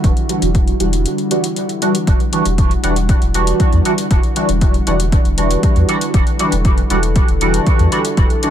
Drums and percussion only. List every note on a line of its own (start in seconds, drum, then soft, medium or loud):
0.04 kick loud
0.04 closed hi-hat soft
0.17 closed hi-hat soft
0.29 closed hi-hat medium
0.42 closed hi-hat medium
0.55 kick loud
0.55 closed hi-hat soft
0.68 closed hi-hat soft
0.80 closed hi-hat medium
0.93 closed hi-hat medium
1.06 closed hi-hat soft
1.18 closed hi-hat soft
1.31 closed hi-hat medium
1.44 closed hi-hat medium
1.56 closed hi-hat soft
1.69 closed hi-hat soft
1.82 closed hi-hat medium
1.95 closed hi-hat medium
2.07 kick loud
2.07 closed hi-hat medium
2.20 closed hi-hat soft
2.33 closed hi-hat medium
2.45 closed hi-hat medium
2.58 kick loud
2.58 closed hi-hat soft
2.71 closed hi-hat soft
2.84 closed hi-hat medium
2.96 closed hi-hat medium
3.09 kick loud
3.09 closed hi-hat medium
3.22 closed hi-hat soft
3.34 closed hi-hat medium
3.47 closed hi-hat medium
3.60 kick loud
3.60 closed hi-hat soft
3.73 closed hi-hat soft
3.85 closed hi-hat medium
3.98 closed hi-hat medium
4.11 kick loud
4.11 closed hi-hat medium
4.23 closed hi-hat soft
4.36 closed hi-hat medium
4.49 closed hi-hat medium
4.61 kick loud
4.61 closed hi-hat soft
4.74 closed hi-hat soft
4.87 closed hi-hat medium
5.00 closed hi-hat medium
5.12 kick loud
5.12 closed hi-hat medium
5.25 closed hi-hat soft
5.38 closed hi-hat medium
5.51 closed hi-hat medium
5.63 kick loud
5.63 closed hi-hat medium
5.76 closed hi-hat soft
5.89 closed hi-hat medium
6.01 closed hi-hat medium
6.14 kick loud
6.14 closed hi-hat soft
6.27 closed hi-hat soft
6.39 closed hi-hat medium
6.52 closed hi-hat medium
6.65 kick loud
6.65 closed hi-hat soft
6.78 closed hi-hat soft
6.90 closed hi-hat medium
7.03 closed hi-hat medium
7.16 kick loud
7.16 closed hi-hat soft
7.28 closed hi-hat soft
7.41 closed hi-hat medium
7.54 closed hi-hat medium
7.67 kick loud
7.67 closed hi-hat soft
7.79 closed hi-hat soft
7.92 closed hi-hat medium
8.05 closed hi-hat medium
8.17 kick loud
8.17 closed hi-hat soft
8.30 closed hi-hat soft
8.43 closed hi-hat medium